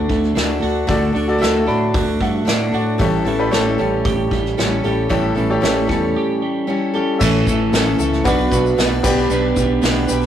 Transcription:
Already playing: D3 D4 F#4 A4 D5
0.09 D2 A3, kick, open hi-hat
0.23 snare
0.35 D2 A3 D4 F#4 A4, snare, open hi-hat
0.60 D2 D4 F#4 A4, open hi-hat
0.87 D2 D3 A3 D4 F#4 A4 D5, kick, open hi-hat
1.12 D2 D3 D4 F#4 A4, open hi-hat
1.28 F#4 A4 D5
1.38 A3 D4 F#4 A4 E5, open hi-hat
1.42 D2, snare
1.66 A2 D4 F#4 A4 B5, open hi-hat
1.94 D2 F#4 A5, kick, open hi-hat
2.21 G2 A3 F#5, kick, open hi-hat
2.45 A2 A3 D4 F#4 A4 E5, snare, open hi-hat
2.72 A2 D4 F#4 A4 D5, open hi-hat
2.98 A1 A2 E3 G3 C#4 E4 G4 A4 C#5, kick, open hi-hat
3.25 A1 E3 G3 C#4 E4 A4, open hi-hat
3.39 G4 A4 B4
3.51 A1 G3 C#4 E4 G4 A4 C#5, snare, open hi-hat
3.78 A1 G3 C#4 E4 A4, open hi-hat
4.05 A1 G4, kick, open hi-hat
4.31 A1 G3, kick, open hi-hat
4.46 snare
4.57 A1 G3 C#4 E4 A4, snare, open hi-hat
4.84 A1 G3 C#4 E4 G4 A4, open hi-hat
5.09 A2 E3 G3 C#4 E4 G4 A4 C#5, kick, open hi-hat
5.35 A1 E3 G3 C#4 E4 A4, open hi-hat
5.50 G4 A4 C#5
5.61 A1 G3 C#4 E4 G4 A4 C#5, snare, open hi-hat
5.87 E2 G3 C#4 E4 A4, kick, snare, open hi-hat
6.16 G4
6.42 G3
6.67 G3 C#4 E4 A4
6.94 G3 C#4 E4 G4 A4
7.18 A1 A2 E3 A3 C#4 E4 A4 C#5 E5, kick, crash, shaker
7.23 A4
7.47 A1 C#4 A4, kick, shaker
7.51 A3
7.72 A1 A2 E3 A3 C#4 E4 A4, snare, open hi-hat, shaker
7.99 C#2 A3 C#4 E4 A4, shaker
8.13 snare, shaker
8.24 B1 B2 F#3 B3 D4 F#4 B4 D5 F#5, kick, open hi-hat, shaker
8.50 B1 B3 D4 F#4 B4, kick, shaker
8.66 shaker
8.77 B1 B3 D4 F#4 B4, snare, open hi-hat, shaker
9.03 B1 B3 D4 G4 B4 D5 G5, kick, crash, shaker
9.30 B1 B3 D4 G4 B4, shaker
9.56 B1 D4 G4 B4, kick, shaker
9.82 B1 B3 D4 G4 B4, snare, open hi-hat, shaker
10.07 B1 D4 G4 B4, shaker
10.21 snare, shaker

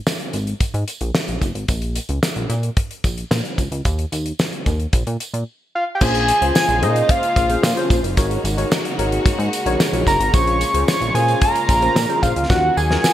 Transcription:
0.07 snare, tambourine
0.19 closed hi-hat
0.33 G#1, closed hi-hat, tambourine
0.47 closed hi-hat
0.60 G#2, kick, closed hi-hat, tambourine
0.74 G#2, closed hi-hat
0.88 closed hi-hat, tambourine
1.01 A#1, closed hi-hat
1.15 snare, tambourine
1.28 A#1, closed hi-hat
1.41 F#1, kick, closed hi-hat, tambourine
1.55 G#1, closed hi-hat
1.68 A#1, kick, closed hi-hat, tambourine
1.82 closed hi-hat
1.96 closed hi-hat, tambourine
2.09 C#2, closed hi-hat
2.23 snare, tambourine
2.36 A#1, closed hi-hat
2.50 A#2, closed hi-hat, tambourine
2.63 closed hi-hat
2.77 kick, closed hi-hat
2.91 closed hi-hat
3.04 A#1, kick, closed hi-hat, tambourine
3.18 closed hi-hat
3.31 A#2, snare, tambourine
3.45 closed hi-hat
3.58 C#2, kick, closed hi-hat, tambourine
3.72 C#2, closed hi-hat
3.85 D#2, kick, closed hi-hat, tambourine
3.99 closed hi-hat
4.12 D#2, closed hi-hat, tambourine
4.26 closed hi-hat
4.39 snare, tambourine
4.53 closed hi-hat
4.66 D#2, kick, closed hi-hat, tambourine
4.80 closed hi-hat
4.93 A#1, kick, closed hi-hat, tambourine
5.07 A#2, closed hi-hat
5.20 closed hi-hat, tambourine
5.34 A#2, closed hi-hat
5.75 F5
5.95 G5
6.01 A#1 C#3 G#3 A#3 C#4 F4 G#4 C5 G#5, kick, crash, tambourine
6.15 closed hi-hat
6.28 closed hi-hat, tambourine
6.41 C#2 C#4 F4 G#4 C5, closed hi-hat
6.55 G#5, snare, tambourine
6.69 A#1, closed hi-hat
6.82 A#2 C#4 F4 G#4 C5 D#5, closed hi-hat
6.96 closed hi-hat
7.09 F5, kick, closed hi-hat
7.23 closed hi-hat
7.36 A#1, kick, closed hi-hat, tambourine
7.50 C#4 F4 G#4 C5, closed hi-hat
7.63 A#2, snare, tambourine
7.76 C#4 F4 G#4 C5, closed hi-hat
7.90 A#1, kick, closed hi-hat, tambourine
8.03 F#1, closed hi-hat
8.17 G#1 A#3 D#4 F#4 A#4 C#5, kick, closed hi-hat, tambourine
8.31 closed hi-hat
8.44 G#1, closed hi-hat, tambourine
8.57 D#4 F#4 A#4 C#5, closed hi-hat
8.71 snare, tambourine
8.85 closed hi-hat
8.98 G#1 D#4 F#4 A#4 C#5, closed hi-hat
9.12 closed hi-hat
9.26 G#2, kick, closed hi-hat, tambourine
9.39 G#2, closed hi-hat
9.53 closed hi-hat, tambourine
9.66 A#1 D#4 F#4 A#4 C#5, closed hi-hat
9.80 snare, tambourine
9.93 A#1 D#4 F#4 A#4 C#5, closed hi-hat
10.07 F#1 A#5, kick, closed hi-hat, tambourine
10.20 G#1, closed hi-hat
10.33 A#1 C#4 F4 G#4 C5 C#6, kick, closed hi-hat, tambourine
10.47 closed hi-hat
10.61 closed hi-hat, tambourine
10.74 C#2 C#4 F4 G#4 C5, closed hi-hat
10.88 C#6, snare, tambourine
11.01 A#1, closed hi-hat
11.14 A#2 C#4 F4 G#4 C5 G#5, closed hi-hat, tambourine
11.28 closed hi-hat
11.41 A#5, kick, closed hi-hat
11.55 closed hi-hat
11.69 A#1, kick, closed hi-hat, tambourine
11.82 C#4 F4 G#4 C5, closed hi-hat
11.96 A#2, snare, tambourine
12.09 C#4 F4 G#4 C5, closed hi-hat
12.22 A#1 F5, kick, closed hi-hat, tambourine
12.36 C#2, closed hi-hat
12.49 D#2 D#3 F#3 C#4 F4 F#4 A#4 F#5, kick, snare, tambourine
12.77 D#2 G#5, tambourine
12.90 C#4 F4 F#4 A#4, snare
13.04 snare, tambourine

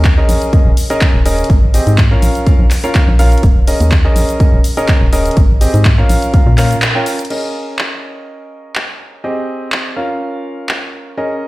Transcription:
Already playing: D#2
0.05 kick, clap, closed hi-hat, shaker
0.18 C#4 G#4 A#4 D#5
0.29 A#1, open hi-hat, shaker
0.42 closed hi-hat, shaker
0.53 C#4 G#4 A#4 D#5, kick, closed hi-hat, shaker
0.66 D#1
0.77 open hi-hat, shaker
0.90 C#4 G#4 A#4 D#5, closed hi-hat, shaker
1.01 kick, clap, closed hi-hat, shaker
1.14 D#1
1.26 C#4 G#4 A#4 D#5, open hi-hat, shaker
1.39 closed hi-hat, shaker
1.44 closed hi-hat
1.50 G#1, kick, closed hi-hat, shaker
1.74 C4 G4 G#4 D#5, open hi-hat, shaker
1.87 G#2, closed hi-hat, shaker
1.98 kick, clap, closed hi-hat, shaker
2.11 C#4 F4 A#4 F5
2.22 A#1, open hi-hat, shaker
2.35 closed hi-hat, shaker
2.47 C#4 F4 A#4 F5, kick, closed hi-hat, shaker
2.59 A#1
2.71 clap, open hi-hat, shaker
2.84 C#4 F4 A#4 F5, closed hi-hat, shaker
2.95 kick, clap, closed hi-hat, shaker
3.08 A#1
3.19 C#4 F4 A#4 F5, open hi-hat, shaker
3.32 closed hi-hat, shaker
3.38 closed hi-hat
3.43 D#1, kick, closed hi-hat, shaker
3.67 C#4 G#4 A#4 D#5, open hi-hat, shaker
3.80 D#2, closed hi-hat, shaker
3.92 kick, clap, closed hi-hat, shaker
4.05 C#4 G#4 A#4 D#5
4.16 A#1, open hi-hat, shaker
4.29 closed hi-hat, shaker
4.40 C#4 G#4 A#4 D#5, kick, closed hi-hat, shaker
4.53 D#1
4.64 open hi-hat, shaker
4.77 C#4 G#4 A#4 D#5, closed hi-hat, shaker
4.88 kick, clap, closed hi-hat, shaker
5.01 D#1
5.13 C#4 G#4 A#4 D#5, open hi-hat, shaker
5.26 closed hi-hat, shaker
5.31 closed hi-hat
5.37 G#1, kick, closed hi-hat, shaker
5.61 C4 G4 G#4 D#5, open hi-hat, shaker
5.74 G#2, closed hi-hat, shaker
5.85 kick, clap, closed hi-hat, shaker
5.98 C#4 F4 A#4 F5
6.09 A#1, open hi-hat, shaker
6.22 closed hi-hat, shaker
6.34 C#4 F4 A#4 F5, kick, closed hi-hat, shaker
6.46 A#2
6.58 C#4 F4 A#4 F5, clap, open hi-hat, shaker
6.71 closed hi-hat, shaker
6.82 clap, closed hi-hat, shaker
6.95 C#4 F4 A#4 G5
7.06 open hi-hat, shaker
7.19 closed hi-hat, shaker
7.25 closed hi-hat
7.30 C#4 G#4 A#4 D#5, crash
7.79 clap
8.76 clap
9.24 C4 G4 G#4 D#5
9.72 clap
9.96 C#4 F4 A#4 F5
10.69 clap
11.17 C#4 G#4 A#4 D#5

